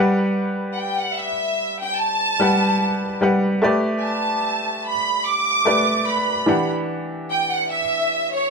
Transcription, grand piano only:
Already playing: G3 G4 B4 F#5
2.40 G3 G4 B4 F#5
3.21 G3 G4 B4 F#5
3.62 A3 G4 B4 D5
5.65 A3 G4 B4 D5
6.46 E3 D4 G4 F#5

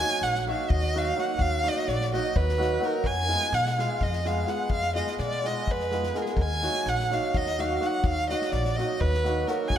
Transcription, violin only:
Already playing: G#5
0.23 F#5
0.50 F5
0.70 D#5
0.98 F5
1.20 F#5
1.41 F5
1.68 D#5
1.88 D5
2.15 D#5
2.36 B4
2.85 A#4
3.06 G#5
3.54 F#5
3.80 F5
4.03 D#5
4.27 F5
4.50 F#5
4.70 F5
4.96 D#5
5.21 D5
5.46 D#5
5.71 B4
6.18 A#4
6.22 G#4
6.31 A#4
6.41 G#5
6.88 F#5
7.14 F5
7.36 D#5
7.60 F5
7.86 F#5
8.05 F5
8.30 D#5
8.52 D5
8.76 D#5
9.00 B4
9.47 A#4
9.68 G#5

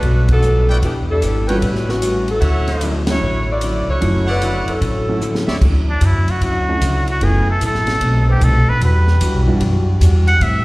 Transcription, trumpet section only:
0.69 E4 B4 D5 G5
1.47 F#4 B4 C#5 G5
2.40 E4 C#5 E5 F#5
4.26 E4 C#5 D5 F#5
5.47 E4 C#5 D5 E5

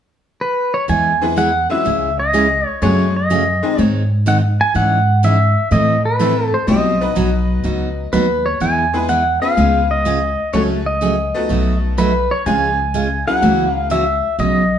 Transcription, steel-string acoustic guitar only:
0.88 E3 G#3 B3 E4 G#4
1.36 E3 G#3 B3 E4 G#4
1.85 C#3 G#3 C#4 E4 G#4
2.33 C#3 G#3 C#4 E4 G#4
2.82 C#3 F#3 A3 C#4 G#4
3.30 C#3 F#3 A3 C#4 G#4
3.78 D#3 G#3 C4 D#4 G#4
4.26 D#3 G#3 C4 D#4 G#4
4.74 E3 G#3 C#4 D#4 G#4
5.23 E3 G#3 C#4 D#4 G#4
5.71 E3 A3 C4 E4 A4
6.19 E3 A3 C4 E4 A4
6.68 B2 F#3 B3 D#4 F#4
7.15 B2 F#3 B3 D#4 F#4
7.64 B2 F#3 B3 D#4 F#4
8.13 B2 F#3 B3 D#4 F#4
8.60 E3 G#3 B3 E4 G#4
9.08 E3 G#3 B3 E4 G#4
9.57 C#3 G#3 B3 F4 G#4
10.05 C#3 G#3 B3 F4 G#4
10.53 C#3 F#3 A3 C#4 G#4
11.01 C#3 F#3 A3 C#4 G#4
11.49 B2 F#3 A3 D#4 F#4
11.98 B2 F#3 A3 D#4 F#4
12.46 C#3 G#3 C#4 F4 G#4
12.94 C#3 G#3 C#4 F4 G#4
13.42 C#3 E3 A#3 C#4 F#4
13.90 C#3 E3 A#3 C#4 F#4
14.39 B2 C#3 F#3 B3 D#4 B4

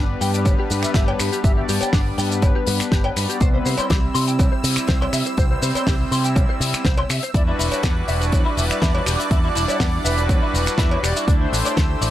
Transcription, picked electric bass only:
Already playing: G1
0.21 G2
0.46 G1
0.71 G2
0.84 muted picked electric bass stroke
0.95 G1
1.20 G2
1.44 G1
1.69 G2
1.82 muted picked electric bass stroke
1.93 G1
2.18 G2
2.43 G1
2.67 G2
2.80 muted picked electric bass stroke
2.92 G1
3.17 G2
3.41 C2
3.65 C3
3.78 muted picked electric bass stroke
3.90 C2
4.15 C3
4.39 C2
4.64 C3
4.77 muted picked electric bass stroke
4.88 C2
5.13 C3
5.38 C2
5.62 C3
5.75 muted picked electric bass stroke
5.87 C2
6.11 C3
6.36 C2
6.60 C3
6.74 muted picked electric bass stroke
6.85 C2
7.10 C3
7.34 E2
7.59 E1
7.72 muted picked electric bass stroke
7.84 E2
8.08 E1
8.33 E2
8.57 E1
8.70 muted picked electric bass stroke
8.82 E2
9.07 E1
9.31 E2
9.56 E1
9.69 muted picked electric bass stroke
9.80 E2
10.05 E1
10.29 E2
10.54 E1
10.67 muted picked electric bass stroke
10.78 E2
11.03 E1
11.28 D2
11.52 A1
11.65 muted picked electric bass stroke
11.77 D2
12.01 A1

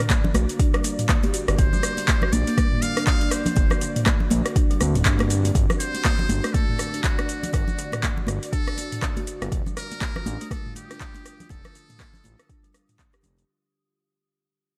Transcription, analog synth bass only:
0.34 A#1
1.48 G1
1.59 G1
2.33 A#1
3.57 G1
4.31 A#1
4.81 D2
4.95 D1
5.06 G1
5.55 G1
6.29 G1
7.54 G1
8.28 G1
9.41 G1
9.52 F1
10.26 A1
11.50 F1
12.25 A1
13.24 F1

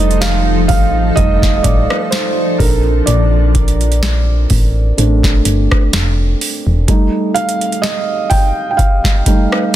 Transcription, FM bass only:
Already playing: F1
0.70 A1
1.17 F1
1.64 A1
2.60 A#1
3.08 A#1
4.51 A1
4.98 A1
5.45 G1
5.93 F1
6.67 E1

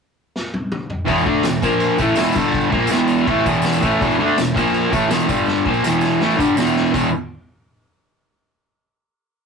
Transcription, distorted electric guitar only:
1.05 E2 B2 E3
1.25 D3 A3 D4
1.45 E2 B2
1.62 A#2 F3 A#3
1.98 A2 E3 A3
2.17 E2 B2 E3
2.34 G2 D3 G3
2.70 A#2 F3 A#3
2.89 E2 B2 E3
3.26 A2 E3 A3
3.45 E2 B2 E3
3.81 A2 E3 A3
4.00 E2 B2 E3
4.18 D3 A3 D4
4.37 E2 B2
4.54 A#2 F3 A#3
4.91 A2 E3 A3
5.09 E2 B2 E3
5.27 G2 D3 G3
5.65 A#2 F3 A#3
5.84 E2 B2 E3
6.20 A2 E3 A3
6.36 G2 D3 G3
6.56 E2 B2 E3
6.92 E2 B2 E3

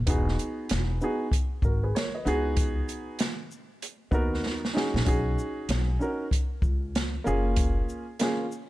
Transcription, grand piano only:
0.07 B3 D#4 F#4 G#4
1.01 B3 D#4 F#4 G#4
1.65 F#4 A#4
1.83 G#4 B4
1.95 A#4 C#5
2.15 B4 D#5
2.25 B3 D#4 F#4 G#4
4.11 B3 D#4 F#4 A#4
4.74 C#4 D#4 F#4 G#4
5.05 C#4 D#4 F#4 G#4
5.99 C#4 D#4 F#4 A#4
7.24 A#3 C#4 F4 G#4
8.20 A#3 C#4 F4 G#4

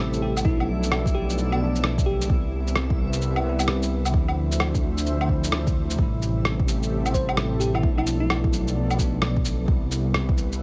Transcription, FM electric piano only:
0.22 G4
0.45 E4
1.14 G4
2.06 G4
7.14 C5
7.60 G4
7.74 E4
7.98 E4
8.20 E4

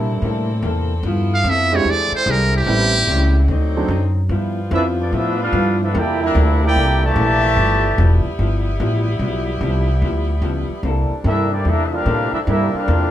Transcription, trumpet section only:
4.74 D4 A4 B4 E5
5.01 B3 F4 A4 D5
5.15 D4 A4 B4 E5
5.42 D4 A4 B4 F5
5.83 D4 A4 B4 E5
5.98 E4 A#4 D5 G5
6.24 D4 G4 A#4 E5
6.65 E4 A#4 D5 G5
7.06 G4 D5 E5 A5
11.26 D4 G4 A#4 E5
11.53 A#3 E4 G4 D5
11.67 D4 G4 A#4 E5
11.85 E5
11.93 D4 G4 A#4 F5
12.33 D4 G4 A#4 E5
12.49 D4 G4 A#4 E5
12.76 D4 G4 A#4 F5

